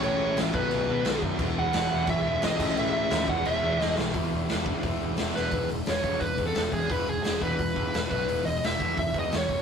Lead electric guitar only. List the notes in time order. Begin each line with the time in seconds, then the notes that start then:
0.04 C#5
0.55 B4
1.59 F#5
2.10 E5
2.45 D#5
2.79 E5
2.93 E5
3.29 F#5
3.46 E5
3.81 D#5
5.36 B4
5.90 C#5
6.20 B4
6.47 A4
6.73 G#4
6.91 B4
7.09 G#4
7.23 G#4
7.42 B4
8.10 B4
8.45 D#5
8.65 E5
8.99 E5
9.19 D#5
9.37 C#5